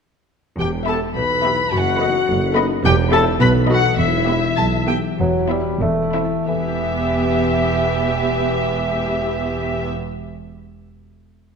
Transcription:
0.58 tuba E1, double bass section E1, cello section E2, harp E2, clarinet G4, violin section G5
0.77 harp B3
0.87 viola section B3 G4, clarinet A4, violin section E5 A5 B5
0.96 harp E4
1.16 double bass section B1, tuba B1, cello section B2, harp G4, clarinet B4, violin section B5
1.34 harp B4
1.43 viola section B3 G4, violin section E5 B5
1.52 harp E4
1.71 double bass section F#1, tuba F#1, harp F#2, cello section F#2, clarinet F#4, violin section F#5
1.90 harp B3
2.00 viola section B3 A4, violin section D#5 B5
2.09 harp D#4
2.27 tuba F#1, double bass section F#1, cello section F#2, harp A4
2.46 harp B4
2.55 viola section B3 A4, violin section D#5 B5
2.65 harp D#4
2.83 double bass section E1, tuba E1, harp E2, cello section E2, clarinet G4, violin section G5
3.02 harp B3
3.11 viola section B3 G4, clarinet A4, violin section E5 A5 B5
3.21 harp E4 G4
3.40 tuba B1, double bass section B1, harp B2, cello section B2, clarinet B4, violin section B5
3.59 harp B3
3.68 viola section B3 A4, clarinet F#4, violin section D#5 F#5 B5
3.78 harp D#4 A4
3.98 tuba E1, double bass section E1, cello section E2, harp E3, clarinet E4, violin section E5
4.18 harp E4
4.27 viola section B3 G4, violin section E5 B5
4.38 harp G4
4.56 tuba B1, double bass section B1, cello section B2, harp B4, violin section A5
4.77 harp E5
4.88 viola section B3 G4, violin section G5
4.98 harp G4
5.18 double bass section E1, cello section E2, harp E3, bassoon F#3
5.39 harp E4
5.49 bassoon G3, viola section B3, violin section E4 E5
5.59 harp E4 B4
5.81 double bass section E1, cello section E2, harp E3, bassoon A3
6.03 harp E4
6.14 viola section C4, violin section E4 E5
6.24 harp E4 A4
6.46 double bass section E1, cello section E2, harp E3, bassoon E3, viola section B3, violin section G4 E5
6.53 harp B3
6.60 harp E4
6.68 harp G4
6.75 harp E5

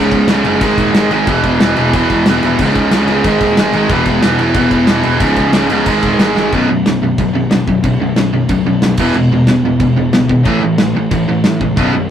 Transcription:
Already playing: overdriven electric guitar C#2 G#2 C#3
0.11 picked electric bass C#1, kick, crash
0.27 picked electric bass C#1, overdriven electric guitar C#2 G#2 C#3, snare, crash
0.44 picked electric bass F#1, overdriven electric guitar C#2 G#2 C#3, crash
0.60 picked electric bass G#1, overdriven electric guitar G#2 D#3 G#3, kick, crash
0.78 picked electric bass D#1, kick, crash
0.93 picked electric bass G#1, overdriven electric guitar G#2 D#3 G#3, snare, crash
1.09 picked electric bass G#1, overdriven electric guitar G#2 D#3 G#3, crash
1.27 picked electric bass E1, overdriven electric guitar E2 B2 E3, kick, crash
1.44 picked electric bass E1, kick, crash
1.60 picked electric bass E1, overdriven electric guitar E2 B2 E3, snare, crash
1.77 picked electric bass E1, overdriven electric guitar E2 B2 E3, crash
1.93 picked electric bass E1, overdriven electric guitar E2 B2 E3, kick, crash
2.10 picked electric bass E1, kick, crash
2.26 picked electric bass E1, overdriven electric guitar E2 B2 E3, snare, crash
2.43 picked electric bass D#1, overdriven electric guitar E2 B2 E3, crash
2.59 picked electric bass C#1, overdriven electric guitar C#2 G#2 C#3, kick, crash
2.75 picked electric bass C#1, kick, crash
2.91 picked electric bass C#1, overdriven electric guitar C#2 G#2 C#3, snare, crash
3.08 picked electric bass C#1, overdriven electric guitar C#2 G#2 C#3, crash
3.24 picked electric bass G#1, overdriven electric guitar G#2 D#3 G#3, kick, crash
3.41 picked electric bass D#1, kick, crash
3.56 picked electric bass G#1, overdriven electric guitar G#2 D#3 G#3, snare, crash
3.73 picked electric bass G#1, overdriven electric guitar G#2 D#3 G#3, crash
3.89 picked electric bass E1, overdriven electric guitar E2 B2 E3, kick, crash
4.06 picked electric bass E1, kick, crash
4.22 picked electric bass E1, overdriven electric guitar E2 B2 E3, snare, crash
4.39 picked electric bass E1, overdriven electric guitar E2 B2 E3, crash
4.54 picked electric bass E1, overdriven electric guitar E2 B2 E3, kick, crash
4.71 picked electric bass E1, kick, crash
4.87 picked electric bass E1, overdriven electric guitar E2 B2 E3, snare, crash
5.03 picked electric bass E1, overdriven electric guitar E2 B2 E3, crash
5.20 picked electric bass C#1, overdriven electric guitar C#2 G#2 C#3, kick, crash
5.36 picked electric bass C#1, kick, crash
5.53 picked electric bass C#1, overdriven electric guitar C#2 G#2 C#3, snare, crash
5.69 picked electric bass C#1, overdriven electric guitar C#2 G#2 C#3, crash
5.86 picked electric bass G#1, overdriven electric guitar G#2 D#3 G#3, kick, crash
6.03 picked electric bass D#1, kick, crash
6.18 picked electric bass G#1, overdriven electric guitar G#2 D#3 G#3, snare, crash
6.36 picked electric bass G#1, overdriven electric guitar G#2 D#3 G#3, snare
6.52 picked electric bass B0, overdriven electric guitar B1 F#2 B2, kick, crash
6.69 picked electric bass B0, overdriven electric guitar B1 F#2
6.85 picked electric bass B0, overdriven electric guitar B1 F#2, snare, crash
7.01 picked electric bass B0, overdriven electric guitar B1 F#2
7.18 picked electric bass B0, overdriven electric guitar B1 F#2, kick, crash
7.34 picked electric bass B0, overdriven electric guitar B1 F#2
7.50 picked electric bass G#1, overdriven electric guitar B1 F#2, snare, crash
7.67 picked electric bass B0, overdriven electric guitar B1 F#2, kick
7.83 picked electric bass B0, overdriven electric guitar B1 F#2, kick, crash
7.99 picked electric bass B0, overdriven electric guitar B1 F#2
8.16 picked electric bass B0, overdriven electric guitar B1 F#2, snare, crash
8.33 overdriven electric guitar B1 F#2
8.49 picked electric bass B0, overdriven electric guitar B1 F#2, kick, crash
8.65 picked electric bass B0, overdriven electric guitar B1 F#2
8.81 picked electric bass B1, overdriven electric guitar B1 F#2, snare, crash
8.97 picked electric bass E1, overdriven electric guitar E2 B2 E3, kick, crash
9.14 picked electric bass E1, overdriven electric guitar E2 B2, crash
9.30 picked electric bass E1, overdriven electric guitar E2 B2
9.46 picked electric bass E1, overdriven electric guitar E2 B2, snare, crash
9.63 picked electric bass E1, overdriven electric guitar E2 B2
9.80 picked electric bass E1, overdriven electric guitar E2 B2, kick, crash
9.96 picked electric bass E1, overdriven electric guitar E2 B2
10.12 picked electric bass C#1, overdriven electric guitar E2 B2, snare, crash
10.28 picked electric bass G#1, overdriven electric guitar E2 B2, kick
10.43 picked electric bass A1, overdriven electric guitar A2 E3 A3, kick, crash
10.62 picked electric bass A1, overdriven electric guitar A2 E3
10.78 picked electric bass A1, overdriven electric guitar A2 E3, snare, crash
10.94 overdriven electric guitar A2 E3
11.11 picked electric bass A1, overdriven electric guitar A2 E3, kick, crash
11.28 picked electric bass A1, overdriven electric guitar A2 E3
11.44 picked electric bass A2, overdriven electric guitar A2 E3, snare, crash
11.60 picked electric bass C#2, overdriven electric guitar A2 E3, kick
11.76 picked electric bass B0, overdriven electric guitar B1 F#2 B2, kick, crash
11.93 picked electric bass B0, overdriven electric guitar B1 F#2

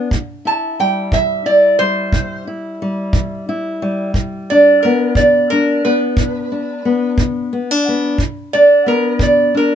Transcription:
0.11 steel-string acoustic guitar C3, kick
0.45 steel-string acoustic guitar E4, resonator guitar played with a steel bar A5
0.80 steel-string acoustic guitar G3, resonator guitar played with a steel bar G5
1.12 steel-string acoustic guitar E3, resonator guitar played with a steel bar E5, kick
1.46 steel-string acoustic guitar E4, resonator guitar played with a steel bar D5
1.79 steel-string acoustic guitar G3, resonator guitar played with a steel bar C5
2.12 steel-string acoustic guitar C3, kick
2.47 steel-string acoustic guitar E4
2.82 steel-string acoustic guitar G3
3.13 steel-string acoustic guitar E3, kick
3.49 steel-string acoustic guitar E4
3.82 steel-string acoustic guitar G3
4.14 steel-string acoustic guitar G2, kick
4.50 steel-string acoustic guitar D4, resonator guitar played with a steel bar D5
4.83 steel-string acoustic guitar B3, resonator guitar played with a steel bar A#4
5.15 steel-string acoustic guitar D3, resonator guitar played with a steel bar D5, kick
5.50 steel-string acoustic guitar D4, resonator guitar played with a steel bar A#4
5.85 steel-string acoustic guitar B3, resonator guitar played with a steel bar B4
6.17 steel-string acoustic guitar G2, kick
6.52 steel-string acoustic guitar D4
6.85 steel-string acoustic guitar B3
7.18 steel-string acoustic guitar D3, kick
7.53 steel-string acoustic guitar B3
7.71 steel-string acoustic guitar D4
7.88 steel-string acoustic guitar B3
8.18 steel-string acoustic guitar G2, kick
8.53 steel-string acoustic guitar D4, resonator guitar played with a steel bar D5
8.86 steel-string acoustic guitar B3, resonator guitar played with a steel bar A#4
9.19 steel-string acoustic guitar D3, resonator guitar played with a steel bar D5, kick
9.54 steel-string acoustic guitar D4, resonator guitar played with a steel bar A#4

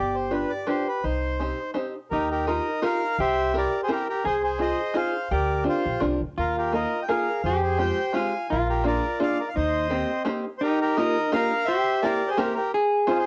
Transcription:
Already playing: upright bass G1, hollow-body jazz guitar G4, accordion D5
0.15 accordion C5
0.31 five-string banjo D4 F4 G4 B4, accordion B4
0.50 accordion D5
0.67 five-string banjo D4 F4 G4 B4, hollow-body jazz guitar G4, accordion C5
0.88 accordion B4
1.03 upright bass C2, hollow-body jazz guitar D#4, accordion C5
1.40 five-string banjo C4 D#4 G4 C5
1.74 five-string banjo C4 D#4 G4 C5
2.11 upright bass D#2, hollow-body jazz guitar D#4, accordion G4 A#4
2.31 accordion G4 A#4
2.46 five-string banjo D#4 F4 G4 A#4, accordion A#4 D#5
2.82 five-string banjo D#4 F4 G4 A#4, accordion A#4 F5
3.19 upright bass C2, hollow-body jazz guitar G4, accordion C5 E5
3.53 five-string banjo C4 E4 G4 A#4
3.57 accordion A#4 D5
3.83 accordion G#4 C5
3.88 five-string banjo C4 E4 G4 A#4, accordion G4 A#4
4.09 accordion G4 A#4
4.25 upright bass C2, hollow-body jazz guitar G#4, accordion G#4 C5
4.43 accordion G#4 C5
4.59 five-string banjo C4 D#4 F4 G#4, accordion C5 D#5
4.94 five-string banjo C4 D#4 F4 G#4, accordion C5 F5
5.31 upright bass D2, hollow-body jazz guitar G4, accordion A#4 D5
5.64 five-string banjo C4 D4 F4 A#4
5.69 accordion F4 C5
5.86 upright bass A#1
6.00 upright bass C2, five-string banjo C4 D4 F4 A#4
6.21 upright bass D2
6.38 upright bass D#2, hollow-body jazz guitar F4, accordion F4 A#4
6.58 accordion G4 A#4
6.73 five-string banjo A#3 D#4 F4 A#4, accordion A#4 D#5
7.03 accordion G5
7.08 five-string banjo A#3 D#4 F4 A#4, hollow-body jazz guitar G#4, accordion A#4 F5
7.44 upright bass F2, hollow-body jazz guitar G4, accordion G#4 C5
7.62 accordion G#4 C5
7.79 five-string banjo G#3 C4 F4 G4, accordion C5 G5
8.13 five-string banjo G#3 C4 F4 G4, accordion F5 G#5
8.21 hollow-body jazz guitar F4
8.50 upright bass A#1, hollow-body jazz guitar F4, accordion F4 A#4
8.69 accordion G4 A#4
8.84 five-string banjo A#3 D4 F4 G#4, accordion A#4 D5
9.20 five-string banjo A#3 D4 F4 G#4, accordion D5 F5
9.26 hollow-body jazz guitar D#4
9.40 accordion A#4 D5
9.48 accordion F5
9.56 upright bass D#2, hollow-body jazz guitar D#4, accordion C5 D#5
9.90 five-string banjo A#3 C4 D#4 G4, hollow-body jazz guitar C4
10.25 five-string banjo A#3 C4 D#4 G4
10.58 hollow-body jazz guitar D#4, accordion C5
10.62 accordion G4 A#4
10.81 accordion G4 A#4
10.97 five-string banjo A#3 D#4 F4 G4 A#4, accordion A#4 D#5
11.30 five-string banjo A#3 D#4 F4 G4 A#4, hollow-body jazz guitar D4, accordion F5
11.35 accordion A#4
11.65 hollow-body jazz guitar G4, accordion C5 E5
12.02 five-string banjo A#3 C4 E4 G4 A#4, accordion A#4 D5
12.28 accordion G#4 C5
12.37 five-string banjo A#3 C4 E4 G4 A#4, accordion G4 A#4
12.55 accordion G4 A#4
12.74 hollow-body jazz guitar G#4
13.07 five-string banjo C4 D#4 F4 G#4 C5, accordion G#4
13.11 accordion F4
13.18 accordion G#4 C5

